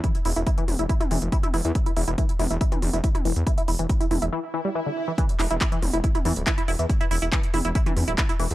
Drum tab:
HH |xxoxxxoxxxoxxxox|xxoxxxoxxxoxxxox|xxoxxxox--------|xxoxxxoxxxoxxxox|
CP |----------------|----------------|----------------|--x-x-------x---|
T2 |------o--oo--o--|------o--oo--o--|------o---------|------o--oo-----|
BD |o---o---o---o---|o---o---o---o---|o---o-----------|o---o---o---o---|

HH |xxoxxxoxxxoxxxox|
CP |----x-------x---|
T2 |------o--oo-----|
BD |o---o---o---o---|